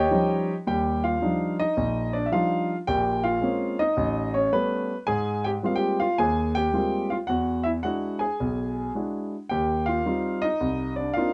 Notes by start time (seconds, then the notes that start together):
Already playing: G4 C#5 D#5 G5
0.11 F3 G3 C#4 D#4
0.67 D#2 G3 G4 G5
1.04 F4 F5
1.22 F3 G3 D4 D#4
1.59 D#4 D#5
1.77 A#1
2.13 D4 D5
2.26 E5
2.32 F3 G3 D4 D#4 F4 F5
2.87 A#1 A#2 G4 G5
3.24 F4 F5
3.41 G#3 A#3 C4 C#4
3.79 D#4 D#5
3.97 A1
4.34 C#4 C#5
4.52 G3 A3 B3 C#4 B4
5.07 G#2 G#4 G#5
5.44 G4 G5
5.63 G3 G#3 A#3 C4 F4 F5
5.76 G4 G5
6.00 F4 F5
6.18 D#2 G#4 G#5
6.55 G4 G5
6.74 G3 G#3 A#3 C4 F4
7.10 F4 F5
7.27 E2 F#4 F#5
7.64 E4 E5
7.83 G#3 D4 E4 F#4 F#5
8.19 G#4 G#5
8.40 B1
8.95 G#3 D4 E4 F#4
9.49 D#2 G4 G5
9.86 F4 F5
10.06 G3 C4 D#4 F4
10.42 D#4 D#5
10.61 C2
10.96 D4 D5
11.14 A#3 C4 F4 F5
11.18 D4 D#4